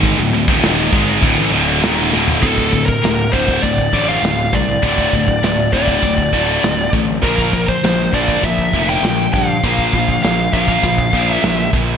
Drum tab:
CC |x---x---x---x---|x---------------|----------------|----------------|
RD |----------------|----b---b---b---|b---b---b---b---|b---b---b---b---|
SD |----o-------o-o-|----o-------o---|----o-------o---|----o-------o---|
FT |---------------o|----------------|----------------|----------------|
BD |o--o--o-o-------|oooo--ooooo---o-|oooo--ooooo---o-|oooo--ooooo---o-|

CC |----------------|
RD |b---b---b---b---|
SD |----o-------o---|
FT |----------------|
BD |oooo--ooooo---o-|